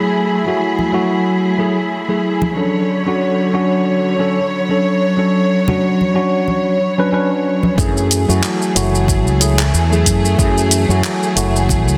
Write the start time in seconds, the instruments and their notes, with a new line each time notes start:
Already playing: tine electric piano F#3 A3 E4 G#4, string section F#3 A3 E4 G#4, synth texture B5
0.46 tine electric piano F#3 A3 E4 F#4
0.79 high conga
0.92 tine electric piano F#3 A3 E4 F#4
1.58 tine electric piano F#3 A3 E4 G#4
2.08 tine electric piano F#3 A3 E4 G#4
2.42 high conga
2.56 string section D3 F#3 C#5, tine electric piano F#3 C#4 D4 A4
3.06 tine electric piano F#3 C#4 D4 F#4
3.53 tine electric piano F#3 C#4 D4 F#4
4.19 tine electric piano F#3 C#4 D4 A4
4.69 tine electric piano F#3 C#4 D4 A4
5.17 tine electric piano F#3 C#4 D4 A4
5.67 tine electric piano F#3 C#4 D4 F#4, low conga
6.01 high conga
6.14 tine electric piano F#3 C#4 D4 F#4
6.48 high conga
6.98 tine electric piano F#3 C#4 D4 B4
7.12 tine electric piano F#3 C#4 D4 B4
7.63 high conga
7.77 fretless electric bass F#2, string section E3 A3 G#4, tine electric piano F#3 A3 E4 G#4, kick, shaker
7.97 shaker
8.11 closed hi-hat, shaker
8.28 fretless electric bass F#2, tine electric piano F#3 A3 E4 F#4, shaker
8.43 clap, shaker
8.62 shaker
8.75 fretless electric bass F#1, tine electric piano F#3 A3 E4 F#4, closed hi-hat, shaker
8.95 shaker
9.08 kick, shaker
9.27 fretless electric bass C#2, shaker
9.40 tine electric piano F#3 A3 E4 G#4, closed hi-hat, shaker
9.59 clap, shaker
9.74 fretless electric bass E2, shaker
9.91 tine electric piano F#3 A3 E4 G#4, shaker
10.06 fretless electric bass F#2, kick, closed hi-hat, shaker
10.25 shaker
10.38 fretless electric bass F#2, tine electric piano F#3 A3 E4 G#4, kick, shaker
10.58 shaker
10.71 closed hi-hat, shaker
10.89 fretless electric bass F#2, tine electric piano F#3 A3 E4 F#4, shaker
11.04 clap, shaker
11.23 shaker
11.36 fretless electric bass F#1, tine electric piano F#3 A3 E4 F#4, closed hi-hat, shaker
11.56 shaker
11.69 kick, shaker
11.87 fretless electric bass C#2, shaker